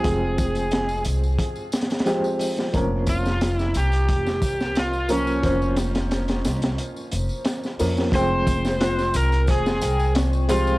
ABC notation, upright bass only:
X:1
M:4/4
L:1/8
Q:1/4=89
K:Fm
V:1 name="Upright bass" clef=bass
F,,,3 C,, z4 | F,,,3 C,, F,,, C,,3 | F,,,3 C,, z F,,, z F,, | F,,,3 C,, F,,, C,,3 |]